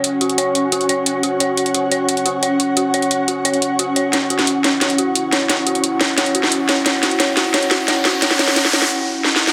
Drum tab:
HH |x-----x--x--x-----x-----x--x--x-----x-----x-----|x-----x--x--x-----x-----x--x--x-----x-----x-----|x-----x--x--x-----x-----x--x--x-----x-----x-----|x-----x--x--x-----x-----x--x--x-----x-----x-----|
SD |------------------------------------------------|------------------------------------------------|------------------------------------------------|o--------o--------o-----o-----------------o-----|

HH |x-----x--x--x-----x-----x--x--x-----x-----x-----|x-----x--x--x-----x-----x--x--x-----x-----x-----|x--x--x--x--x-----x-----------------------------|
SD |o-----------------o-----o--------o--------o-----|o-----o-----o-----o-----o-----o-----o-----o-----|o--o--o--o--o--o--o--o--------------o---o---o---|